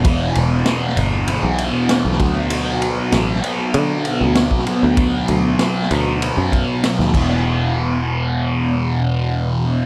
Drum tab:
CC |----------------|----------------|--------------x-|----------------|
RD |x-x-x-x-x-x-x-x-|x-x-x-x-x-x-x-x-|x-x-x-x-x-x-x---|----------------|
SD |----o-------o---|----o-------o---|----o-------oo--|----------------|
BD |o-------------o-|-------------o--|o---------o---o-|----------------|